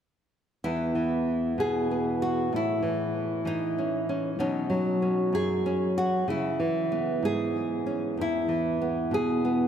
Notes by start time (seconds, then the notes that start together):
0.64 E2 E3 B3 E4
0.95 E3
1.58 B2 G#4
1.91 B3
2.22 F#4
2.53 A2 E4
2.83 E3
3.45 E3 D#4
3.78 C#4
4.09 C#4
4.39 B2 F#3 C#4 D#4
4.70 F#3
5.02 C#4
5.33 F#2 G#4
5.66 C#4
5.98 F#4
6.28 C#3 E4
6.60 E3
6.92 B3
7.22 G#2 G#4
7.86 C#4
8.17 E2
8.21 E4
8.48 E3
8.82 B3
9.11 B2 G#4
9.45 B3